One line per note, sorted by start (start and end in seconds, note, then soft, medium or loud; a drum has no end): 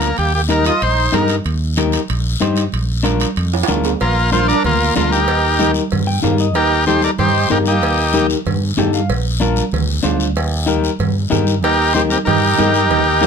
0.00 0.11 D2 medium
0.00 0.17 A#3 medium
0.00 0.17 A#4 medium
0.00 high timbale medium
0.00 short guiro medium
0.17 0.69 D#2 medium
0.17 0.32 A#3 medium
0.17 0.33 G4 medium
0.17 high conga soft
0.17 high timbale medium
0.17 long guiro medium
0.34 0.41 A#3 medium
0.34 0.42 G4 medium
0.49 0.72 D#4 medium
0.49 0.65 D#4 medium
0.49 0.72 G4 medium
0.49 0.72 A#4 medium
0.49 0.65 A#4 medium
0.49 high conga medium
0.49 high timbale medium
0.49 short guiro medium
0.65 0.81 F4 medium
0.65 0.83 D#5 loud
0.65 high timbale medium
0.65 short guiro medium
0.81 1.07 A#1 medium
0.81 1.12 D#4 medium
0.81 1.15 C5 loud
0.81 high conga soft
0.81 high timbale medium
0.81 long guiro medium
1.12 1.39 G2 medium
1.12 1.35 D#4 medium
1.12 1.36 D#4 medium
1.12 1.35 G4 medium
1.12 1.36 A#4 medium
1.12 high conga medium
1.12 high timbale medium
1.12 low timbale medium
1.12 short guiro medium
1.28 high timbale medium
1.28 short guiro medium
1.44 1.96 D#2 medium
1.44 high conga soft
1.44 high timbale medium
1.44 long guiro medium
1.76 2.00 D#4 medium
1.76 2.00 G4 medium
1.76 2.00 A#4 medium
1.76 high conga medium
1.76 high timbale medium
1.76 short guiro medium
1.92 high timbale medium
1.92 short guiro medium
2.08 2.35 A#1 loud
2.08 high conga soft
2.08 high timbale medium
2.08 long guiro medium
2.40 2.67 G2 medium
2.40 2.63 D#4 medium
2.40 2.64 G4 medium
2.40 2.64 C5 medium
2.40 high conga medium
2.40 high timbale medium
2.40 short guiro medium
2.56 high timbale medium
2.56 short guiro medium
2.72 3.24 A#1 medium
2.72 high conga soft
2.72 high timbale medium
2.72 long guiro medium
3.03 3.26 D4 medium
3.03 3.27 F4 medium
3.03 3.27 A#4 medium
3.03 high conga medium
3.03 high timbale medium
3.03 short guiro medium
3.20 high timbale medium
3.20 short guiro medium
3.36 3.62 F2 loud
3.36 high conga soft
3.36 high timbale medium
3.36 long guiro medium
3.53 high timbale medium
3.63 high timbale loud
3.68 3.94 D2 medium
3.68 3.91 D4 medium
3.68 3.91 F4 medium
3.68 3.91 A#4 medium
3.68 high conga medium
3.68 short guiro medium
3.74 low timbale medium
3.84 low timbale medium
3.84 short guiro medium
4.00 4.52 A#1 medium
4.00 4.31 A#3 medium
4.00 4.30 F4 medium
4.00 4.31 A#4 medium
4.00 cowbell medium
4.00 high conga soft
4.00 long guiro medium
4.32 4.54 D4 medium
4.32 4.55 F4 medium
4.32 4.47 F4 medium
4.32 4.48 F4 medium
4.32 4.55 A#4 medium
4.32 4.47 C5 medium
4.32 high conga medium
4.32 short guiro medium
4.48 4.63 D4 medium
4.48 4.63 A#4 medium
4.48 4.63 D5 loud
4.48 short guiro medium
4.64 4.90 D2 medium
4.64 4.95 A#3 medium
4.64 4.95 F4 medium
4.64 4.94 A#4 medium
4.64 cowbell medium
4.64 high conga soft
4.64 low conga medium
4.64 long guiro medium
4.96 5.28 D2 medium
4.96 5.12 A#3 medium
4.96 5.18 D4 medium
4.96 5.18 F4 medium
4.96 5.11 F4 medium
4.96 5.19 A#4 medium
4.96 5.10 A#4 medium
4.96 high conga medium
4.96 low timbale medium
4.96 short guiro medium
5.12 5.72 D#4 medium
5.12 5.72 G4 medium
5.12 5.71 A#4 medium
5.12 short guiro medium
5.28 5.79 D#2 medium
5.28 cowbell loud
5.28 long guiro medium
5.59 5.82 D#4 medium
5.59 5.82 G4 medium
5.59 5.82 A#4 medium
5.59 high conga medium
5.59 short guiro medium
5.74 short guiro medium
5.91 6.17 G2 loud
5.91 cowbell medium
5.91 high conga soft
5.91 low conga medium
5.91 long guiro medium
6.07 6.22 G5 medium
6.22 6.56 G2 medium
6.22 6.45 D#4 medium
6.22 6.46 G4 medium
6.22 6.46 A#4 medium
6.22 6.38 F5 medium
6.22 high conga medium
6.22 low conga medium
6.22 low timbale medium
6.22 short guiro medium
6.38 6.55 D#5 medium
6.38 short guiro medium
6.54 7.06 D#2 loud
6.54 6.85 D#4 medium
6.54 6.85 G4 medium
6.54 6.85 A#4 loud
6.54 cowbell loud
6.54 high conga soft
6.54 long guiro medium
6.86 7.01 D#4 medium
6.86 7.09 D#4 medium
6.86 7.02 G4 medium
6.86 7.10 G4 medium
6.86 7.10 A4 medium
6.86 7.03 C5 medium
6.86 high conga medium
6.86 short guiro medium
7.02 7.10 D#4 medium
7.02 7.11 A#4 medium
7.02 7.11 D5 medium
7.02 short guiro medium
7.18 7.44 G2 loud
7.18 7.48 D#4 medium
7.18 7.49 G4 medium
7.18 7.52 C5 medium
7.18 cowbell medium
7.18 high conga soft
7.18 low conga medium
7.18 long guiro medium
7.50 7.83 G2 medium
7.50 7.73 D#4 medium
7.50 7.58 D#4 medium
7.50 7.73 G4 medium
7.50 7.58 G4 medium
7.50 7.73 A#4 medium
7.50 7.59 A#4 medium
7.50 high conga medium
7.50 low timbale medium
7.50 short guiro medium
7.66 8.26 A#3 medium
7.66 8.27 D#4 medium
7.66 8.27 G4 medium
7.66 short guiro medium
7.82 8.34 D#2 medium
7.82 cowbell loud
7.82 high conga soft
7.82 long guiro medium
8.14 8.36 D#4 medium
8.14 8.36 G4 medium
8.14 8.37 A#4 medium
8.14 high conga medium
8.14 short guiro medium
8.30 short guiro medium
8.46 8.72 G2 loud
8.46 cowbell medium
8.46 high conga soft
8.46 low conga medium
8.46 long guiro medium
8.77 9.11 G2 medium
8.77 9.00 D#4 medium
8.77 9.00 G4 medium
8.77 9.00 A4 medium
8.77 8.93 G5 medium
8.77 high conga medium
8.77 low conga medium
8.77 low timbale medium
8.77 short guiro medium
8.93 9.09 F5 medium
8.93 short guiro medium
9.09 9.60 A#1 medium
9.09 cowbell loud
9.09 high conga soft
9.09 long guiro medium
9.40 9.63 D4 medium
9.40 9.64 F4 medium
9.40 9.63 A#4 medium
9.40 high conga medium
9.40 short guiro medium
9.56 short guiro medium
9.72 9.98 D2 loud
9.72 cowbell medium
9.72 high conga soft
9.72 low conga medium
9.72 long guiro medium
10.03 10.36 D2 medium
10.03 10.26 D4 medium
10.03 10.26 F4 medium
10.03 10.27 C5 medium
10.03 high conga medium
10.03 low timbale medium
10.03 short guiro medium
10.20 short guiro medium
10.36 10.87 D#2 loud
10.36 cowbell loud
10.36 high conga soft
10.36 long guiro medium
10.66 10.90 D#4 medium
10.66 10.90 G4 medium
10.66 10.91 A#4 loud
10.66 high conga medium
10.66 short guiro medium
10.84 short guiro medium
10.99 11.25 G2 loud
10.99 cowbell medium
10.99 high conga soft
10.99 low conga medium
10.99 long guiro medium
11.30 11.64 G2 medium
11.30 11.53 D#4 medium
11.30 11.54 G4 medium
11.30 11.54 A#4 medium
11.30 high conga medium
11.30 low conga medium
11.30 low timbale medium
11.30 short guiro medium
11.47 short guiro medium
11.63 12.15 D#2 medium
11.63 11.93 D#4 medium
11.63 11.94 G4 medium
11.63 11.94 A#4 loud
11.63 cowbell medium
11.63 high conga soft
11.63 long guiro medium
11.94 12.17 D#4 medium
11.94 12.02 D#4 medium
11.94 12.18 G4 medium
11.94 12.03 G4 medium
11.94 12.18 A#4 medium
11.94 12.01 C5 loud
11.94 high conga medium
11.94 short guiro medium
12.10 12.18 C4 medium
12.10 12.19 G4 medium
12.10 12.18 A#4 medium
12.10 short guiro medium
12.25 12.53 G2 loud
12.25 13.27 D#4 medium
12.25 13.27 G4 medium
12.25 13.27 A#4 medium
12.25 cowbell medium
12.25 high conga soft
12.25 low conga medium
12.25 long guiro medium
12.58 12.91 G2 medium
12.58 12.81 D#4 medium
12.58 12.81 G4 medium
12.58 12.81 A#4 medium
12.58 high conga medium
12.58 low timbale medium
12.58 short guiro medium
12.74 short guiro medium
12.91 13.27 D#2 loud
12.91 cowbell medium
12.91 high conga soft
12.91 low conga medium
12.91 long guiro medium
13.21 13.27 D#4 medium
13.21 13.27 G4 medium
13.21 13.27 A#4 medium
13.21 high conga medium
13.21 high timbale medium
13.21 short guiro medium